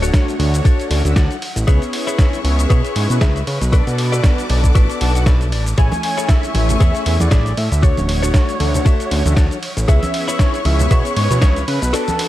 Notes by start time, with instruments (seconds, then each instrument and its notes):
Already playing: analog synth bass D1, analog polysynth A3 D4 F#4 C#5, string section F#5, downlifter
0.02 clean electric guitar D4 F#4 A4 C#5, closed hi-hat, shaker
0.14 kick, snare, closed hi-hat, ride, shaker
0.28 closed hi-hat, shaker
0.39 analog synth bass D2, analog polysynth A3 D4 F#4 C#5, open hi-hat, ride
0.54 closed hi-hat, shaker
0.65 clean electric guitar D4 F#4 A4 C#5, kick, closed hi-hat, ride, shaker
0.80 closed hi-hat, shaker
0.90 analog synth bass D2, analog polysynth A3 C#4 D4 F#4 C#5, clean electric guitar D5, open hi-hat, ride
1.04 analog synth bass D2, analog polysynth A3 C#4 D4 F#4 E5, closed hi-hat, shaker
1.16 analog synth bass D2, clean electric guitar D4 F#4 A4 C#5 F#5, kick, snare, closed hi-hat, ride, shaker
1.31 closed hi-hat, shaker
1.42 open hi-hat, ride
1.56 analog synth bass A1, muted clean electric guitar stroke, closed hi-hat, shaker
1.67 analog synth bass C#2, analog polysynth B3 C#4 E4 G#4 C#5, clean electric guitar E4 G#4 B4 C#5, string section B4 E5 C#6, kick, closed hi-hat, ride, shaker
1.82 closed hi-hat, shaker
1.93 muted clean electric guitar stroke, open hi-hat, ride
2.07 clean electric guitar E4 G#4 B4 C#5, closed hi-hat, shaker
2.19 kick, snare, closed hi-hat, ride, shaker
2.33 closed hi-hat, shaker
2.44 analog synth bass C#2, analog polysynth B3 C#4 E4 G#4 C#5, open hi-hat, ride
2.59 closed hi-hat, shaker
2.70 analog synth bass B2, clean electric guitar E4 G#4 B4 C#5, kick, closed hi-hat, ride, shaker
2.85 closed hi-hat, shaker
2.95 analog synth bass G#2, analog polysynth B3 C#4 E4 G#4 C#5, open hi-hat, ride
3.10 analog synth bass B2, analog polysynth B3 C#4 E4 G#4 F#5, closed hi-hat, shaker
3.21 analog synth bass C#2, clean electric guitar E4 G#4 B4 E5, kick, snare, closed hi-hat, ride, shaker
3.36 closed hi-hat, shaker
3.47 analog synth bass C#3, open hi-hat, ride
3.61 analog synth bass B1, muted clean electric guitar stroke, closed hi-hat, shaker
3.72 analog polysynth B3 D4 F#4 A4 D5, clean electric guitar F#4 A4 B4 D5, string section A5 D6, kick, closed hi-hat, ride, shaker
3.87 analog synth bass B2, closed hi-hat, shaker
3.98 muted clean electric guitar stroke, open hi-hat, ride
4.12 clean electric guitar F#4 A4 B4 D5, closed hi-hat, shaker
4.24 kick, snare, closed hi-hat, ride, shaker
4.38 closed hi-hat, shaker
4.49 analog synth bass B1, analog polysynth B3 D4 F#4 A4 D5, open hi-hat, ride
4.64 kick, closed hi-hat, shaker
4.75 analog synth bass A1, clean electric guitar F#4 A4 B4 D5, kick, closed hi-hat, ride, shaker
4.90 closed hi-hat, shaker
5.01 analog synth bass B1, analog polysynth B3 D4 F#4 A4 D5, clean electric guitar A5, open hi-hat, ride
5.15 analog polysynth B3 D4 F#4 A4 F#5, clean electric guitar F#5, closed hi-hat, shaker
5.26 clean electric guitar F#4 A4 B4 D5 E5, kick, snare, closed hi-hat, ride, shaker
5.41 closed hi-hat, shaker
5.52 analog synth bass A1, clean electric guitar D5, open hi-hat, ride
5.66 muted clean electric guitar stroke, closed hi-hat, shaker
5.77 analog synth bass A1, analog polysynth A3 C#4 E4 C#5 G#5, string section A3 G#5 C#6, clean electric guitar E4 G#4 A4 C#5, analog synth lead G#5, kick, closed hi-hat, ride, shaker
5.92 closed hi-hat, high conga, shaker
6.03 muted clean electric guitar stroke, open hi-hat, ride
6.17 clean electric guitar E4 G#4 A4 C#5, closed hi-hat, shaker
6.29 analog synth lead E5, kick, snare, closed hi-hat, ride, shaker
6.43 closed hi-hat, shaker
6.54 analog synth bass A1, analog polysynth A3 C#4 E4 C#5 G#5, open hi-hat, ride, high conga
6.69 closed hi-hat, low conga, shaker
6.80 analog synth bass E2, clean electric guitar E4 G#4 A4 C#5, analog synth lead E5, kick, closed hi-hat, ride, shaker
6.95 closed hi-hat, shaker
7.06 analog synth bass E2, analog polysynth A3 C#4 E4 G#4 C#5, open hi-hat, ride
7.20 analog synth bass E2, analog polysynth A3 C#4 E4 G#4 F#5, analog synth lead D5, closed hi-hat, high conga, shaker
7.31 analog synth bass A1, clean electric guitar E4 G#4 A4 E5, kick, snare, closed hi-hat, ride, shaker
7.46 closed hi-hat, shaker
7.57 analog synth bass A2, analog synth lead E5, open hi-hat, ride
7.71 analog synth bass D2, muted clean electric guitar stroke, closed hi-hat, shaker
7.82 analog polysynth A3 D4 F#4 C#5, clean electric guitar D4 F#4 A4 C#5, string section C#5 F#5, analog synth lead C#5, kick, closed hi-hat, ride, shaker
7.97 analog synth bass D1, closed hi-hat, high conga, shaker
8.08 muted clean electric guitar stroke, open hi-hat, ride
8.23 clean electric guitar D4 F#4 A4 C#5, closed hi-hat, shaker
8.34 kick, snare, closed hi-hat, ride, shaker
8.49 closed hi-hat, shaker
8.59 analog synth bass D2, analog polysynth A3 D4 F#4 C#5, open hi-hat, ride, high conga
8.74 closed hi-hat, low conga, shaker
8.85 clean electric guitar D4 F#4 A4 E5, kick, closed hi-hat, ride, shaker
9.00 closed hi-hat, shaker
9.11 analog synth bass D2, analog polysynth A3 C#4 D4 F#4 C#5, open hi-hat, ride
9.25 analog synth bass D2, analog polysynth A3 C#4 D4 F#4 E5, closed hi-hat, high conga, shaker
9.36 analog synth bass D2, clean electric guitar D4 F#4 A4 C#5, kick, snare, closed hi-hat, ride, shaker
9.51 closed hi-hat, shaker
9.63 open hi-hat, ride
9.77 analog synth bass A1, muted clean electric guitar stroke, closed hi-hat, shaker
9.87 analog synth bass C#2, analog polysynth B3 C#4 E4 G#4 C#5, clean electric guitar E4 G#4 B4 C#5, string section B4 E5 C#6, analog synth lead E5, kick, closed hi-hat, ride, shaker
10.03 closed hi-hat, high conga, shaker
10.14 muted clean electric guitar stroke, open hi-hat, ride
10.28 clean electric guitar E4 G#4 B4 C#5, closed hi-hat, shaker
10.39 analog synth lead C#5, kick, snare, closed hi-hat, ride, shaker
10.54 closed hi-hat, shaker
10.65 analog synth bass C#2, analog polysynth B3 C#4 E4 G#4 C#5, analog synth lead E5, open hi-hat, ride, high conga
10.79 closed hi-hat, low conga, shaker
10.91 analog synth bass B2, clean electric guitar E4 G#4 B4 E5, analog synth lead C#5, kick, closed hi-hat, ride, shaker
11.05 closed hi-hat, shaker
11.16 analog synth bass G#2, analog polysynth B3 C#4 E4 G#4 C#5, analog synth lead C#5, open hi-hat, ride
11.30 analog synth bass B2, analog polysynth B3 C#4 E4 G#4 F#5, closed hi-hat, high conga, shaker
11.42 analog synth bass C#2, clean electric guitar E4 G#4 B4 C#5, kick, snare, closed hi-hat, ride, shaker
11.56 closed hi-hat, shaker
11.68 analog synth bass C#3, analog synth lead B4, open hi-hat, ride
11.82 analog synth bass B1, muted clean electric guitar stroke, closed hi-hat, shaker
11.92 analog polysynth B3 D4 F#4 A4, clean electric guitar F#4 A4 B4 D5, analog synth lead A4, string section A5, closed hi-hat, ride, shaker
12.08 closed hi-hat, high conga, shaker
12.19 muted clean electric guitar stroke, open hi-hat, ride